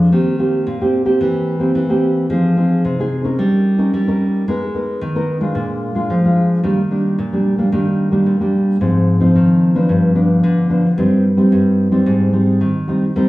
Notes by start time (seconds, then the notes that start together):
Already playing: F3 G#3 D4
0.12 D#3 A#3 C4 G4
0.39 A#3 C4 G4
0.67 A#2
0.81 A#3 C4 G4
1.05 A#3 C4 G4
1.21 E3
1.59 A#3 C4 G4
1.75 E3
1.89 A#3 C4 G4
2.30 F3 C4 D#4 G#4
2.56 C4 D#4 G#4
2.85 C3
2.99 C4 D#4 G#4
3.24 C#4 D#4 A#4
3.39 G3
3.78 C#4 D#4 A#4
3.94 G3
4.07 C#4 D#4 A#4
4.48 G#3 B3 D#4 A#4
4.74 B3 D#4 A#4
5.01 D#3
5.15 B3 D#4 A#4
5.40 G#3 D4 F4
5.55 A#2
5.95 G#3 D4 F4
6.10 F3
6.25 G#3 D4 F4
6.63 D#3 G3 A#3 D4
6.91 G3 A#3 D4
7.19 A#2
7.33 G3 A#3 D4
7.58 G3 A#3 D4
7.72 D#3 G3 A#3 D4
8.12 G3 A#3 D4
8.26 A#2
8.40 G3 A#3 D4
8.81 G#2 F3 C4 D#4
9.20 F3 C4 D#4
9.36 D#3
9.75 F3 B3 D4
9.89 G2
10.15 F3 B3 D4
10.43 D3
10.70 F3 B3 D4
10.98 G2 G3 C4 D#4
11.37 G3 C4 D#4
11.52 G2
11.92 G3 C4 D#4
12.06 G#2
12.33 G3 C4 D#4
12.61 D#3
12.88 G3 C4 D#4
13.16 G3 C4 D#4 A#4